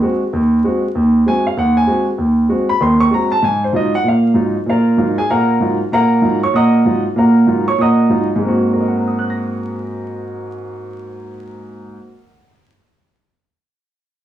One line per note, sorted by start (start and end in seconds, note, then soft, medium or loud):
0.02 0.22 G#3 soft
0.02 0.22 C4 soft
0.02 0.22 F#4 medium
0.33 0.59 D#2 medium
0.64 0.84 G#3 soft
0.64 0.84 C4 soft
0.64 0.84 F#4 medium
0.95 1.21 D#2 medium
1.26 1.46 G#3 soft
1.26 1.46 C4 soft
1.26 1.46 F#4 medium
1.26 1.45 G#5 medium
1.47 1.57 F5 medium
1.57 1.83 D#2 medium
1.57 1.76 F#5 medium
1.77 2.05 G#5 medium
1.87 2.07 G#3 soft
1.87 2.08 C4 soft
1.87 2.08 F#4 medium
2.18 2.45 D#2 medium
2.49 2.69 G#3 soft
2.49 2.70 C4 soft
2.49 2.70 F#4 medium
2.69 2.80 B5 medium
2.81 3.07 D#2 medium
2.81 3.07 D#3 medium
2.81 3.00 C6 medium
3.00 3.11 C#6 loud
3.11 3.31 G#3 soft
3.11 3.31 C4 soft
3.11 3.32 F#4 medium
3.11 3.31 A#5 medium
3.32 3.43 A5 medium
3.42 3.69 G#2 medium
3.42 3.62 G#5 medium
3.64 3.74 C5 medium
3.73 3.93 G#2 soft
3.73 3.93 F#3 soft
3.73 3.94 D#4 soft
3.73 3.94 F4 medium
3.73 3.93 D#5 medium
3.95 4.05 F#5 medium
4.04 4.31 A#2 medium
4.08 4.35 F5 medium
4.34 4.55 G#2 soft
4.34 4.55 F#3 soft
4.34 4.55 D#4 soft
4.34 4.56 F4 medium
4.66 4.93 A#2 medium
4.66 4.97 F4 medium
4.66 5.15 A#4 medium
4.66 5.15 F5 medium
4.97 5.18 G#2 soft
4.97 5.18 F#3 soft
4.97 5.18 D#4 soft
4.97 5.18 F4 medium
5.18 5.29 G#4 medium
5.18 5.29 G#5 medium
5.30 5.56 A#2 medium
5.30 5.56 A#3 medium
5.30 5.77 A#4 medium
5.30 5.77 F5 medium
5.30 5.77 F#5 medium
5.30 5.76 A#5 medium
5.60 5.80 G#2 soft
5.60 5.80 F#3 soft
5.60 5.81 D#4 soft
5.60 5.81 F4 medium
5.92 6.18 A#2 medium
5.92 6.39 A#4 medium
5.92 6.40 F5 medium
5.92 6.39 F#5 medium
5.92 6.39 A#5 medium
6.22 6.42 G#2 soft
6.22 6.42 F#3 soft
6.22 6.43 D#4 soft
6.22 6.43 F4 soft
6.43 6.54 C#5 medium
6.43 6.54 C#6 medium
6.53 6.80 A#2 medium
6.53 6.80 A#3 medium
6.53 7.02 D#5 medium
6.53 7.02 F#5 medium
6.53 7.02 A#5 medium
6.53 7.01 D#6 medium
6.85 7.05 G#2 soft
6.85 7.06 F#3 soft
6.85 7.06 D#4 soft
6.85 7.06 F4 medium
7.16 7.43 A#2 medium
7.16 7.43 A#3 medium
7.16 7.64 A#4 soft
7.16 7.64 F5 soft
7.16 7.64 F#5 medium
7.16 7.64 A#5 medium
7.47 7.67 G#2 soft
7.47 7.68 F#3 soft
7.47 7.68 D#4 soft
7.47 7.68 F4 medium
7.68 7.79 C#5 medium
7.68 7.79 C#6 medium
7.79 8.05 A#2 medium
7.79 8.27 D#5 medium
7.79 8.27 F#5 medium
7.79 8.27 A#5 medium
7.79 8.27 D#6 medium
8.10 8.30 G#2 soft
8.10 8.30 F#3 soft
8.10 8.30 D#4 soft
8.10 8.30 F4 medium
8.36 11.96 G#2 medium
8.36 11.99 G#3 soft
8.42 12.02 A#3 soft
8.42 12.05 C4 soft
8.48 12.08 F#4 medium
8.73 12.29 A#4 soft
8.80 12.36 D#5 soft
8.88 12.44 F#5 soft
8.98 12.50 A#5 soft
9.07 12.55 D#6 soft
9.19 12.60 F#6 soft
9.30 12.66 A#6 soft